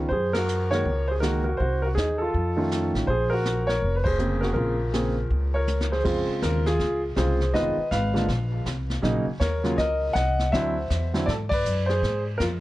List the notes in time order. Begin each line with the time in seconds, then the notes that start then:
0.09 F#2 G#4 C5, brush sweep, kick
0.34 F#4 A#4, snare, ride
0.48 hi-hat pedal
0.71 D#3 G#3 A#3 F#4 A#4 C#5, snare
0.85 C#2, brush sweep, kick
1.08 G#4 C5
1.20 D#3 G#3 A#3 F#4 A#4, snare, hi-hat pedal
1.44 F#4 A#4
1.57 C2 F#4 C5, brush sweep, kick
1.82 F#4 A#4
1.95 D#2 D#4 G#4, snare, hi-hat pedal
2.18 F4 A4
2.34 F2, brush sweep, kick
2.56 D#3 A3 C#4 F4
2.71 snare, hi-hat pedal
2.94 A1, snare
3.07 A#1 G#4 C5, brush sweep, kick
3.30 F#4 A#4
3.45 snare, hi-hat pedal
3.67 A#4 C#5, snare
3.82 F1, brush sweep, kick
3.96 B4
4.04 G#4 C5, kick, ride
4.19 C#3 A#3 C4 G#4, hi-hat pedal
4.41 F#4 A#4, snare
4.54 A#1 F4 A#4, brush sweep, kick
4.93 C#3 A#3 C4 G#4, snare, hi-hat pedal
5.31 C#2, brush sweep, kick
5.54 A#4 C#5
5.68 hi-hat pedal, high tom
5.81 snare
5.92 G#4 C5, snare
6.04 F2 C#3 G#3 C4 F4, brush sweep, kick, snare, crash
6.28 muted upright bass stroke
6.42 D#2 F4 A#4, kick, snare, hi-hat pedal
6.66 F4 G#4, snare
6.79 C#2, brush sweep, kick, snare
7.16 C2 C#3 G#3 C4 F4 G#4 C5, kick, snare, hi-hat pedal
7.41 snare
7.54 F1 D#3 G#3 B3 F4 B4 D#5, brush sweep, kick, snare
7.77 muted upright bass stroke
7.91 G#1 B4 F5, kick, snare, hi-hat pedal
8.14 D3 G#3 A#3 F4, snare
8.28 A#1, brush sweep, kick, snare
8.66 C2, kick, snare, hi-hat pedal
8.90 snare
9.02 A#1 C#3 F#3 A#3 D#4, brush sweep, kick, snare
9.26 muted upright bass stroke
9.40 D#2 A#4 C#5, kick, snare, hi-hat pedal
9.64 C#3 F#3 A#3 F4, snare
9.78 C#2 A#4 D#5, brush sweep, kick, snare
10.13 C2 D#5 F#5, kick, snare, hi-hat pedal
10.39 snare
10.52 D2 D3 F#3 C4 E4 C5 E5, brush sweep, kick, snare
10.90 E2, kick, snare, hi-hat pedal
11.13 D3 F#3 C4 E4, snare
11.26 G#2 A4 D5, brush sweep, kick, snare
11.49 B4 D5, kick, crash
11.65 F#2, hi-hat pedal
11.86 G#4 C5, snare
12.02 G#2, brush sweep, kick, snare
12.38 F2 F4 A#4, kick, snare, hi-hat pedal